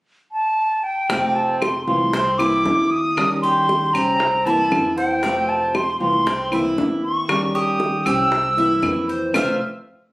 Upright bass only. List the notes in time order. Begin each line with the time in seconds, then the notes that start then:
1.10 F1
1.87 C2
2.65 D#2
3.94 C2
4.72 F2
6.00 C2
6.78 D#2
8.06 C2
8.82 F2
9.34 F1